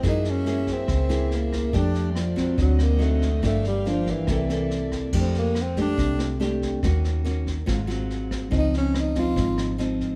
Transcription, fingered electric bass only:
0.04 F#2
0.88 C#2
1.73 F2
2.58 D2
3.43 G1
4.28 C2
5.13 F2
5.98 C2
6.83 D#2
7.68 G#1
8.52 C#2
9.37 G#1

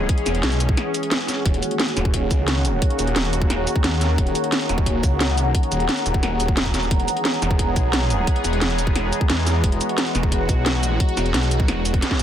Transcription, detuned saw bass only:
0.26 E1
0.43 B1
1.45 D#1
1.97 D#1
2.31 C#2
2.99 D#1
3.16 D#1
3.84 D#2
4.18 D#1
4.69 D#1
5.03 C#2
5.72 D#1
6.06 D#1
6.57 D#1
6.91 E1
7.42 E1
7.76 B1
8.44 E1
8.61 E1
9.30 E2
9.64 E1
10.15 E1
10.49 B1
11.17 E1
11.34 B1
11.68 E1
12.19 E2

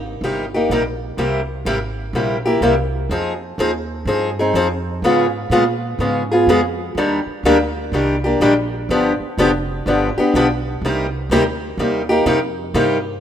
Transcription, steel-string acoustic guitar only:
0.24 C3 G3 A#3 D#4 G4
0.54 A#3 D#4 G4
0.71 C3 G3 A#3 D#4 G4
1.18 C3 G3 A#3 E4 G4
1.66 C3 G3 A#3 E4 G4
2.15 C3 G3 A#3 E4 G4
2.46 A#3 E4 G4
2.62 C3 G3 A#3 E4 G4
3.11 F3 C4 D#4 G#4
3.59 F3 C4 D#4 G#4
4.07 F3 C4 D#4 G#4
4.39 C4 D#4 G#4
4.55 F3 C4 D#4 G#4
5.04 C#3 G#3 B3 F4 G#4
5.51 C#3 G#3 B3 F4 G#4
6.00 C#3 G#3 B3 F4 G#4
6.31 B3 F4 G#4
6.49 C#3 G#3 B3 F4 G#4
6.97 D#3 G3 A#3 D4 G4
7.45 D#3 G3 A#3 D4 G4
7.93 D#3 G3 A#3 D4 G4
8.24 A#3 D4 G4
8.41 D#3 G3 A#3 D4 G4
8.90 D3 F3 B3 D4 G4
9.38 D3 F3 B3 D4 G4
9.87 D3 F3 B3 D4 G4
10.18 B3 D4 G4
10.35 D3 F3 B3 D4 G4
10.85 C3 G3 A#3 D#4 G4
11.31 C3 G3 A#3 D#4 G4
11.79 C3 G3 A#3 D#4 G4
12.09 A#3 D#4 G4
12.26 C3 G3 A#3 D#4 G4
12.74 C3 G3 A#3 D#4 G4

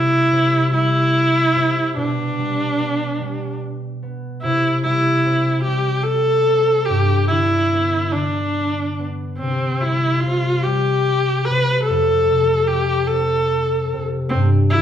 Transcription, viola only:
Already playing: E4
0.73 E4
1.98 D4
4.42 E4
4.83 E4
5.64 G4
6.04 A4
6.86 G4
7.28 E4
8.12 D4
9.38 C4
9.81 E4
10.20 F4
10.63 G4
11.45 B4
11.83 A4
12.67 G4
13.07 A4
14.29 C4
14.70 E4

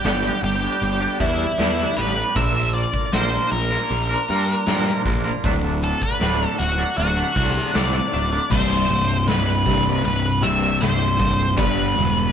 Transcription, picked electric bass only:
0.05 G1
0.43 G1
0.82 G1
1.20 E2
1.59 E2
1.98 A1
2.36 A#1
3.13 A#1
3.52 A#1
3.91 A#1
4.30 G2
4.67 G2
5.05 A#1
5.44 D1
6.21 D1
6.60 D1
6.98 D1
7.36 C2
7.75 C2
8.14 D1
8.51 C1
8.91 C1
9.29 C1
9.66 C1
10.05 C1
10.82 C1
11.20 C1
11.58 G1
11.96 E1

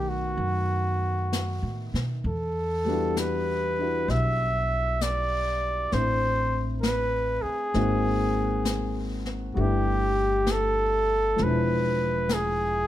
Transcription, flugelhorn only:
Already playing: G4
0.09 F#4
2.27 A4
3.19 B4
4.10 E5
5.02 D5
5.93 C5
6.81 B4
7.42 G#4
9.53 F#4
9.60 G4
10.51 A4
11.43 B4
12.33 G#4

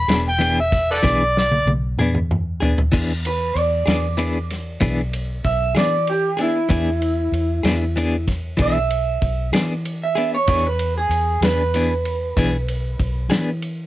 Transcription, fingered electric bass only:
0.08 E1
1.04 B1
1.66 B1
1.98 E2
2.94 E2
3.55 E2
3.87 E2
4.81 B1
5.44 B1
5.75 E3
6.70 E2
7.32 E2
7.64 E2
8.59 B1
9.22 B1
9.52 E3
10.48 E2
11.09 E2
11.41 E2
12.36 B1
12.99 B1
13.29 E3

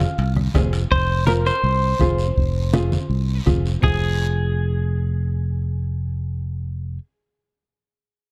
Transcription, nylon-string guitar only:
0.55 C4 F4 G#4
1.27 C4 F4 A#4
2.00 C4 F4 G#4
2.73 C4 F4 G#4
3.46 C4 F4 G#4
3.81 C4 F4 G#4

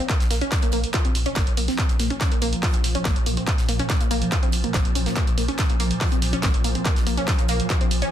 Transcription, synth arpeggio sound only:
0.09 A#3
0.31 A#3
0.41 C#4
0.62 A#3
0.73 A#3
0.94 F4
1.05 C4
1.26 C#4
1.36 A#3
1.57 A#3
1.68 C4
1.78 A#3
2.00 A#3
2.10 C#4
2.32 A#3
2.42 A#3
2.63 F4
2.74 C4
2.95 C#4
3.05 A#3
3.26 A#3
3.37 C4
3.47 A#3
3.69 A#3
3.79 C#4
4.01 A#3
4.11 A#3
4.32 F4
4.43 C4
4.64 A#3
4.74 C4
4.95 C#4
5.06 A#3
5.16 A#3
5.38 A#3
5.48 C#4
5.70 A#3
5.80 A#3
6.01 F4
6.12 C4
6.33 C#4
6.43 A#3
6.64 A#3
6.75 C4
6.85 A#3
7.07 A#3
7.17 C#4
7.39 A#3
7.49 A#3
7.70 F4
7.81 C4
8.02 C#4

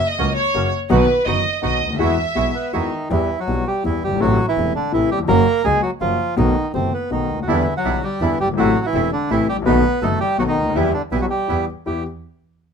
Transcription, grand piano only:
0.19 C#2 C#3 F#3 A#3 F#4
0.54 F#2 C#3 F#3 A#3 F#4
0.89 B1 B2 D#3 F#3 B3 F#4
1.26 F#1 F#2 D#3 F#3 B3 F#4
1.62 B1 B2 D#3 F#3 B3 F#4
1.85 C#2
1.90 D2
1.94 D#2
1.99 E2 E3 G#3 B3 F#4
2.35 B1 B2 E3 G#3 B3 F#4
2.73 E2 E3 G#3 B3 F#4
3.10 E2 E3 G3 B3 G4
3.47 B1 B2 E3 G3 B3 G4
3.83 E2 E3 G3 B3 G4
4.06 F#1
4.12 G1 G#1
4.20 A1 A2 C3 E3 A3 E4
4.56 E1 E2 C3 E3 A3 E4
4.92 A1 A2 C3 E3 A3 E4
5.14 D#2
5.18 E2
5.23 F2
5.28 F#2 C#3 F#3 A#3 F#4
5.64 C#2 C#3 F#3 A#3 F#4
6.01 F#2 C#3 F#3 A#3 F#4
6.36 B1 B2 D#3 A3 B3 F#4
6.74 F#1 F#2 D#3 A3 B3 F#4
7.10 B1 B2 D#3 A3 B3 F#4
7.34 C#2
7.39 D2
7.43 D#2
7.48 E2 D3 E3 G3 B3 E4
7.84 B1 B2 D3 G3 B3 E4
8.21 E2 D3 E3 G3 B3 E4
8.44 F#1
8.48 G1
8.53 G#1
8.58 A1 A2 C3 E3 A3 E4
8.93 E1 E2 C3 E3 A3 E4
9.30 A1 A2 C3 E3 A3 E4
9.53 G#1
9.58 A1 A#1
9.66 B1 B2 D#3 A3 B3 F#4
10.02 F#1 F#2 D#3 A3 B3 F#4
10.38 B1 B2 D#3 A3 B3 F#4
10.61 C#2
10.66 D2
10.70 D#2
10.75 E2 E3 G3 B3 G4
11.11 B1 B2 E3 G3 B3 G4
11.48 E2 E3 G3 B3 G4
11.86 E2 B3 E4 G4

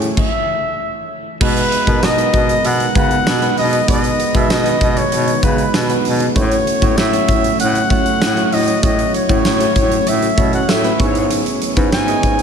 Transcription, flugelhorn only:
0.19 E5
1.43 B4
2.04 D#5
2.66 F#5
2.97 F#5
3.58 D#5
3.89 D#5
4.35 E5
4.51 D#5
4.97 C#5
5.43 B4
6.36 C#5
6.99 E5
7.60 F#5
7.91 F#5
8.53 D#5
8.84 D#5
9.15 C#5
10.08 E5
10.54 F#5
10.70 E5
11.93 G#5

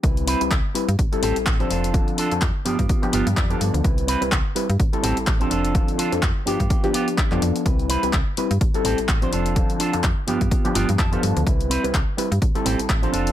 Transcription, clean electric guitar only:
0.27 C4 E4 B4
0.98 muted clean electric guitar stroke
1.22 C4 G4 A4
1.46 muted clean electric guitar stroke
1.59 C4 G4 A4
1.70 D4 F4 A4
2.18 D4 F4 A4
2.65 B3 F4 G4
3.12 B3 F4 G4
3.36 D5, muted clean electric guitar stroke
3.49 B3 F4 G4
3.73 muted clean electric guitar stroke
4.07 C4 E4 B4
4.79 muted clean electric guitar stroke
5.02 C4 G4 A4
5.27 muted clean electric guitar stroke
5.40 C4 G4 A4
5.50 D4 F4 A4
5.98 D4 F4 A4
6.46 B3 F4 G4
6.93 B3 F4 G4
7.17 muted clean electric guitar stroke
7.31 B3 F4 G4
7.54 muted clean electric guitar stroke
7.89 C4 E4 B4
8.60 muted clean electric guitar stroke
8.84 C4 G4 A4
9.08 muted clean electric guitar stroke
9.22 C4 G4 C5
9.32 D4 F4 A4
9.79 D4 F4 A4
10.03 muted clean electric guitar stroke
10.27 B3 F4 G4
10.75 B3 F4 G4
10.98 A5, muted clean electric guitar stroke
11.12 B3 F4 G4
11.35 muted clean electric guitar stroke
11.70 C4 E4 B4
11.93 muted clean electric guitar stroke
12.41 muted clean electric guitar stroke
12.65 C4 G4 A4
12.89 muted clean electric guitar stroke
13.02 C4 G4 A4
13.13 D4 F4 A4

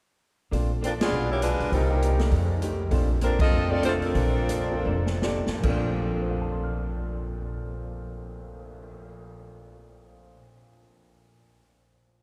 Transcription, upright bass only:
0.52 A#1
1.12 B1
1.60 B1
1.72 C2
2.32 F2
2.91 A#1
3.52 F1
4.15 A#1
4.85 F1
5.47 muted upright bass stroke
5.63 A#1

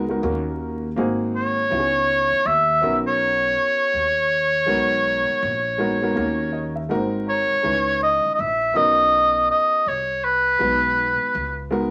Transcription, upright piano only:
0.09 G#3 B3 D#4 F#4 A#4
0.22 A#3 C#4 D#4 F#4 A#4
0.96 A#3 C4 D#4 F#4 G#4
1.70 B3 C#4 D#4 E4 F#4
1.79 G#4
2.81 B3 C#4 D#4 F#4 A#4
4.66 G#3 B3 D#4 F#4 A#4
5.78 G#3 B3 D#4 F#4 A#4
6.01 G#3 B3 D#4 F#4 A#4
6.15 A#3 C#4 D#4 F#4 A#4
6.53 D#5
6.76 E5
6.89 G#3 A#3 D#4 F#4 A#4 F#5
6.96 C4
7.27 A#5
7.63 G#3 C#4 D#4 E4 B4
8.74 B3 C#4 D#4 F#4 A#4
10.59 G#3 B3 D#4 F#4 B4
11.71 G#3 B3 D#4 F#4 A#4

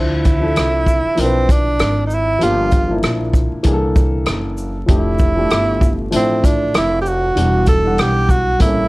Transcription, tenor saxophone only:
Already playing: E4
1.20 C4
1.52 D4
2.07 D#4
2.14 E4
2.44 F4
4.90 E4
6.15 C4
6.45 D4
6.77 E4
7.01 G4
7.08 F#4
7.69 A4
8.00 G4
8.31 F#4
8.62 E4

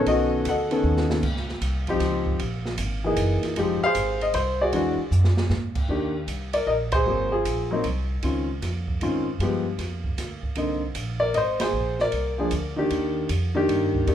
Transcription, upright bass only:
0.06 B1
0.45 D2
0.84 D#2
1.23 C#2
1.61 C2
2.00 C#2
2.39 A#1
2.78 G#1
3.17 F#1
3.43 muted upright bass stroke
3.57 F1
3.82 muted upright bass stroke
3.95 G#1
4.34 C2
4.73 E2
4.98 muted upright bass stroke
5.11 F#2
5.50 G#2
5.88 D#2
6.27 C2
6.66 A#1
7.06 G#1
7.45 A#1
7.85 C2
8.23 C#2
8.62 F2
9.01 G#2
9.39 G2
9.79 F2
10.17 D2
10.42 muted upright bass stroke
10.56 C2
10.95 A#1
11.34 G#1
11.73 A#1
12.12 C2
12.52 D2
12.91 D#2
13.29 F2
13.68 G2
14.07 D#2

